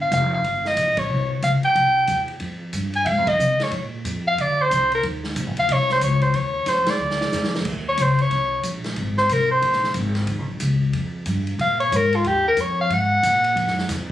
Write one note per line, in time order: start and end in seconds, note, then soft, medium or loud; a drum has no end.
0.00 0.11 G1 medium
0.00 0.12 F5 medium
0.12 0.43 F1 medium
0.12 0.32 F5 medium
0.12 kick soft
0.12 hi-hat pedal medium
0.12 ride medium
0.34 0.68 F5 medium
0.44 0.76 G1 medium
0.44 kick soft
0.44 ride medium
0.65 1.00 D#5 medium
0.65 snare soft
0.77 1.09 A#1 medium
0.77 kick soft
0.77 hi-hat pedal medium
0.77 ride medium
0.97 1.31 C#5 medium
0.97 kick medium
0.97 ride medium
1.10 1.42 C2 medium
1.42 1.62 C#2 medium
1.42 1.53 F5 medium
1.42 kick soft
1.42 hi-hat pedal medium
1.42 ride medium
1.63 2.26 G5 medium
1.63 muted upright bass stroke soft
1.63 ride soft
1.75 2.07 C2 medium
1.75 kick soft
1.75 ride medium
2.07 2.40 E2 medium
2.07 kick soft
2.07 hi-hat pedal medium
2.07 ride medium
2.28 ride soft
2.40 2.72 F2 medium
2.40 kick soft
2.40 ride medium
2.73 3.05 G2 medium
2.73 kick soft
2.73 hi-hat pedal soft
2.73 ride medium
2.93 3.04 G#5 medium
2.93 ride soft
3.05 3.18 G#2 medium
3.05 3.08 E5 medium
3.05 3.29 F5 medium
3.05 kick soft
3.05 ride medium
3.18 3.29 F2 soft
3.27 3.39 D#2 medium
3.27 3.65 D#5 medium
3.27 kick medium
3.27 ride medium
3.39 3.58 C3 medium
3.39 hi-hat pedal medium
3.60 3.74 C#5 medium
3.60 muted upright bass stroke soft
3.60 snare soft
3.60 ride soft
3.71 4.04 A#2 medium
3.71 kick soft
3.71 ride medium
4.05 4.37 F2 medium
4.05 kick soft
4.05 hi-hat pedal soft
4.05 ride medium
4.27 4.42 F5 medium
4.38 4.70 D2 medium
4.38 4.63 D5 medium
4.38 kick soft
4.38 ride medium
4.62 4.93 C5 medium
4.71 5.02 C2 medium
4.71 kick soft
4.71 hi-hat pedal medium
4.71 ride medium
4.92 5.04 A#4 medium
4.92 ride soft
5.03 5.35 D#2 medium
5.03 kick soft
5.03 ride medium
5.24 snare soft
5.36 5.46 A#1 medium
5.36 kick soft
5.36 hi-hat pedal medium
5.36 ride medium
5.46 5.57 G1 medium
5.57 5.68 D#1 medium
5.57 5.74 F5 medium
5.57 ride soft
5.69 6.00 C2 medium
5.69 5.91 C#5 medium
5.69 kick soft
5.69 ride medium
5.89 6.02 C5 medium
5.89 snare soft
6.01 6.33 C#2 medium
6.01 6.22 C#5 medium
6.01 kick soft
6.01 hi-hat pedal medium
6.01 ride medium
6.21 6.37 C5 medium
6.21 ride soft
6.34 6.65 D#2 medium
6.34 6.70 C#5 medium
6.34 kick soft
6.34 ride medium
6.66 6.86 F2 medium
6.66 6.91 C5 medium
6.66 kick soft
6.66 snare soft
6.66 hi-hat pedal medium
6.66 ride medium
6.86 7.54 D5 medium
6.86 muted upright bass stroke soft
6.86 snare medium
6.86 ride medium
6.99 7.31 D2 medium
7.11 snare medium
7.21 snare medium
7.32 7.64 F2 medium
7.32 snare medium
7.32 hi-hat pedal medium
7.44 snare medium
7.55 snare medium
7.65 7.97 D#2 medium
7.65 kick medium
7.65 crash medium
7.89 8.04 C#5 medium
7.97 8.30 C#2 medium
7.97 kick soft
7.97 hi-hat pedal medium
7.97 ride medium
8.02 8.21 C5 medium
8.19 8.62 C#5 medium
8.19 ride soft
8.31 8.63 C2 medium
8.31 kick soft
8.31 ride medium
8.63 8.96 A#1 medium
8.63 kick soft
8.63 hi-hat pedal medium
8.63 ride medium
8.84 snare soft
8.84 ride soft
8.96 9.28 G#1 medium
8.96 kick soft
8.96 ride medium
9.17 9.34 C5 medium
9.17 snare soft
9.29 9.61 C2 medium
9.29 9.50 A#4 medium
9.29 kick soft
9.29 hi-hat pedal medium
9.29 ride medium
9.51 9.92 C5 medium
9.62 9.94 A#1 medium
9.62 kick soft
9.62 ride medium
9.72 snare soft
9.84 snare soft
9.94 10.27 G#1 medium
9.94 kick soft
9.94 hi-hat pedal soft
9.94 ride medium
10.15 snare soft
10.15 ride soft
10.27 10.38 D#2 medium
10.27 kick soft
10.27 ride medium
10.38 10.47 C#2 soft
10.48 10.59 A#1 medium
10.60 10.92 C#2 medium
10.60 kick soft
10.60 hi-hat pedal medium
10.60 ride medium
10.93 11.25 F2 medium
10.93 kick soft
10.93 ride medium
11.26 11.58 G2 medium
11.26 kick soft
11.26 hi-hat pedal soft
11.26 ride medium
11.47 ride soft
11.59 11.91 A#2 medium
11.59 11.79 F5 medium
11.59 kick soft
11.59 ride soft
11.80 11.97 C#5 medium
11.80 ride soft
11.92 12.24 G#2 medium
11.92 12.17 A#4 medium
11.92 kick soft
11.92 hi-hat pedal medium
11.92 ride medium
12.13 12.29 F4 medium
12.13 ride soft
12.24 12.56 D#2 medium
12.24 12.47 G4 medium
12.24 kick soft
12.24 ride medium
12.48 12.62 A#4 medium
12.57 12.89 F2 medium
12.57 12.80 C#5 medium
12.57 kick soft
12.57 hi-hat pedal medium
12.57 ride medium
12.81 12.95 F5 medium
12.90 13.22 G#2 medium
12.90 13.90 F#5 medium
12.90 kick soft
12.90 ride medium
13.23 13.55 A#2 medium
13.23 kick soft
13.23 hi-hat pedal medium
13.23 ride medium
13.44 ride soft
13.56 13.88 F#2 medium
13.56 kick soft
13.56 ride medium
13.67 snare soft
13.78 snare soft
13.89 14.12 F2 medium
13.89 kick soft
13.89 snare soft
13.89 hi-hat pedal medium
13.89 ride medium